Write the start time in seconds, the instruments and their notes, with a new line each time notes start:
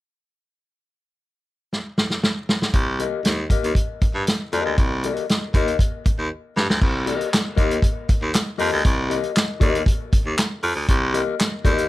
1.73 snare
1.98 snare
2.10 snare
2.23 snare
2.49 snare
2.62 snare
2.74 baritone saxophone C2, kick, closed hi-hat
3.00 clean electric guitar G4 A#4 D#5, closed hi-hat
3.24 baritone saxophone D#2, snare, closed hi-hat
3.50 clean electric guitar G4 A#4 D#5, kick, closed hi-hat
3.64 baritone saxophone D#2, closed hi-hat
3.75 kick, closed hi-hat
4.02 baritone saxophone G2, kick, closed hi-hat
4.14 baritone saxophone G2
4.27 snare, closed hi-hat
4.53 baritone saxophone F2, clean electric guitar G4 A#4 D#5, closed hi-hat
4.65 baritone saxophone D2
4.78 baritone saxophone C2, kick, closed hi-hat
5.04 clean electric guitar G4 A#4 D#5, closed hi-hat
5.17 closed hi-hat
5.29 snare, closed hi-hat
5.54 baritone saxophone D#2, clean electric guitar G4 A#4 D#5, kick, closed hi-hat
5.68 closed hi-hat
5.79 kick, closed hi-hat
6.06 baritone saxophone D#2, kick, closed hi-hat
6.18 baritone saxophone D#2
6.56 baritone saxophone G2, snare
6.70 baritone saxophone D2, snare
6.82 baritone saxophone C2, kick, crash
7.06 clean electric guitar G4 A#4 D#5, closed hi-hat
7.21 closed hi-hat
7.33 snare, clap, closed hi-hat
7.56 baritone saxophone D#2, clean electric guitar G4 A#4 D#5, kick, closed hi-hat
7.71 closed hi-hat
7.82 kick, closed hi-hat
8.09 baritone saxophone D#2, kick, closed hi-hat
8.21 baritone saxophone D#2
8.34 snare, clap, closed hi-hat
8.58 baritone saxophone F2, clean electric guitar G4 A#4 D#5, open hi-hat
8.72 baritone saxophone D2
8.85 baritone saxophone C2, kick, closed hi-hat
9.10 clean electric guitar G4 A#4 D#5, closed hi-hat
9.24 closed hi-hat
9.36 snare, clap, closed hi-hat
9.60 baritone saxophone D#2, clean electric guitar G4 A#4 D#5, kick, closed hi-hat
9.75 closed hi-hat
9.86 kick, closed hi-hat
10.13 baritone saxophone D#2, kick, closed hi-hat
10.25 baritone saxophone D#2
10.38 snare, clap, closed hi-hat
10.63 baritone saxophone F2, open hi-hat
10.75 baritone saxophone D2
10.88 baritone saxophone C2, kick, closed hi-hat
11.14 clean electric guitar G4 A#4 D#5, closed hi-hat
11.40 snare, clap, closed hi-hat
11.64 baritone saxophone D#2, clean electric guitar G4 A#4 D#5, kick, closed hi-hat
11.78 closed hi-hat